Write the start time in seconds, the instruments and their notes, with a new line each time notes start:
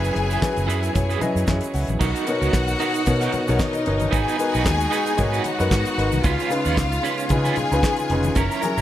Already playing: grand piano F#3 C#4 E4 G#4 A4 A#4 B4, string section F#3 B3 E4 G#4 G#5, clean electric guitar E4 G#4 B4
0.04 closed hi-hat, shaker
0.14 fingered electric bass F#1, muted clean electric guitar stroke, closed hi-hat, muted conga
0.30 clean electric guitar E4 G#4 B4, closed hi-hat, shaker
0.41 grand piano F#3 C#4 E4 G#4 B4, muted clean electric guitar stroke, kick, snare, clap, high conga, shaker
0.56 fingered electric bass F#1, muted clean electric guitar stroke, closed hi-hat, shaker
0.67 fingered electric bass F#2, clean electric guitar E4 G#4 B4, grand piano B4, closed hi-hat, shaker
0.82 muted clean electric guitar stroke, closed hi-hat, shaker
0.93 fingered electric bass F#2, grand piano C#5, muted clean electric guitar stroke, kick, closed hi-hat, muted conga, low conga, shaker
1.09 clean electric guitar E4 G#4 B4, closed hi-hat, shaker
1.20 grand piano F#3 C#4 E4 G#4 B4 D#5, muted clean electric guitar stroke, closed hi-hat, muted conga, low conga, shaker
1.35 fingered electric bass F#2, muted clean electric guitar stroke, closed hi-hat, shaker
1.47 fingered electric bass F#2, grand piano F#3 C#4 E4 G#4 C#5 E5, muted clean electric guitar stroke, kick, snare, clap, high conga, shaker
1.61 muted clean electric guitar stroke, closed hi-hat, shaker
1.74 fingered electric bass C#2, grand piano F#5, open hi-hat, shaker
1.87 fingered electric bass A#1, muted clean electric guitar stroke, closed hi-hat, high conga, shaker
1.99 fingered electric bass B1, string section B3 D#4 F#4 A#4 F#5, clean electric guitar D#4 F#4 A#4, kick, crash, muted conga, shaker
2.16 closed hi-hat, shaker
2.26 grand piano B2 B3 D#4 A#4 C#5, muted clean electric guitar stroke, closed hi-hat, shaker
2.41 fingered electric bass C#2, clean electric guitar D#4 F#4 A#4, closed hi-hat, shaker
2.53 fingered electric bass B1, muted clean electric guitar stroke, kick, snare, clap, high conga, shaker
2.67 muted clean electric guitar stroke, closed hi-hat, shaker
2.80 clean electric guitar D#4 F#4 A#4, closed hi-hat, shaker
2.94 muted clean electric guitar stroke, closed hi-hat, shaker
3.06 grand piano B2 B3 D#4 A#4 C#5, fingered electric bass B2, muted clean electric guitar stroke, kick, closed hi-hat, muted conga, low conga, shaker
3.21 clean electric guitar D#4 F#4 A#4, snare, closed hi-hat, shaker
3.32 muted clean electric guitar stroke, closed hi-hat, muted conga, low conga, shaker
3.48 fingered electric bass B1, grand piano B2 B3 D#4 A#4 C#5, muted clean electric guitar stroke, closed hi-hat, shaker
3.59 string section D#4 D#5, muted clean electric guitar stroke, kick, snare, clap, high conga, shaker
3.73 muted clean electric guitar stroke, closed hi-hat, shaker
3.86 fingered electric bass G1, grand piano B2 B3 D#4 A#4 C#5, closed hi-hat
4.00 muted clean electric guitar stroke, closed hi-hat, high conga, shaker
4.11 fingered electric bass G#1, string section G#3 B3 F#4 G#4 G#5, clean electric guitar D#4 F#4 B4, kick, closed hi-hat, muted conga, shaker
4.28 closed hi-hat, shaker
4.37 grand piano G#3 D#4 F#4 A#4 B4, muted clean electric guitar stroke, closed hi-hat, shaker
4.52 fingered electric bass B1, clean electric guitar D#4 F#4 B4, closed hi-hat, shaker
4.64 fingered electric bass D#2, muted clean electric guitar stroke, kick, snare, clap, high conga, shaker
4.78 muted clean electric guitar stroke, closed hi-hat, shaker
4.91 clean electric guitar D#4 F#4 B4, closed hi-hat, shaker
5.06 muted clean electric guitar stroke, closed hi-hat, shaker
5.17 fingered electric bass G#2, grand piano G#3 D#4 F#4 A#4 C#5, muted clean electric guitar stroke, kick, closed hi-hat, muted conga, low conga, shaker
5.32 clean electric guitar D#4 F#4 B4, closed hi-hat, shaker
5.43 string section F#4 F#5, muted clean electric guitar stroke, closed hi-hat, muted conga, shaker
5.59 fingered electric bass F#2, grand piano G#3 D#4 F#4 A#4 B4, muted clean electric guitar stroke, closed hi-hat, shaker
5.71 fingered electric bass G#2, muted clean electric guitar stroke, kick, snare, clap, high conga, shaker
5.85 muted clean electric guitar stroke, closed hi-hat, shaker
5.97 fingered electric bass G#1, grand piano G#3 D#4 F#4 A#4 B4, closed hi-hat
6.12 fingered electric bass C2, muted clean electric guitar stroke, closed hi-hat, high conga, shaker
6.24 fingered electric bass C#2, string section C#3 G#3 B3 F4 F5, clean electric guitar C#4 F4 B4, kick, closed hi-hat, muted conga, shaker
6.39 closed hi-hat, shaker
6.50 grand piano C#3 C#4 D#4 F4 B4, muted clean electric guitar stroke, closed hi-hat, shaker
6.65 fingered electric bass D#2, clean electric guitar C#4 F4 B4, closed hi-hat, shaker
6.77 fingered electric bass C#2, muted clean electric guitar stroke, kick, snare, clap, high conga, shaker
6.92 muted clean electric guitar stroke, closed hi-hat, shaker
7.03 clean electric guitar C#4 F4 B4, closed hi-hat, shaker
7.18 muted clean electric guitar stroke, closed hi-hat, shaker
7.29 grand piano C#3 C#4 D#4 F4 B4, fingered electric bass C#3, string section G#4 G#5, muted clean electric guitar stroke, kick, closed hi-hat, muted conga, low conga, shaker
7.45 clean electric guitar C#4 F4 B4, snare, closed hi-hat, shaker
7.56 muted clean electric guitar stroke, closed hi-hat, muted conga, low conga, shaker
7.72 fingered electric bass C#2, grand piano C#3 C#4 D#4 F4 B4, muted clean electric guitar stroke, closed hi-hat, shaker
7.83 muted clean electric guitar stroke, kick, snare, clap, high conga, shaker
7.96 muted clean electric guitar stroke, closed hi-hat, shaker
8.10 fingered electric bass F1, grand piano C#3 C#4 D#4 F4 B4, closed hi-hat
8.23 muted clean electric guitar stroke, closed hi-hat, high conga, shaker
8.35 fingered electric bass F#1, string section F#3 C#4 E4 A#4 A#5, clean electric guitar C#4 E4 A#4, kick, closed hi-hat, muted conga, shaker
8.51 closed hi-hat, shaker
8.62 grand piano F#3 C#4 E4 G#4 A#4, muted clean electric guitar stroke, closed hi-hat, muted conga, shaker
8.77 fingered electric bass G#1, clean electric guitar C#4 E4 A#4, shaker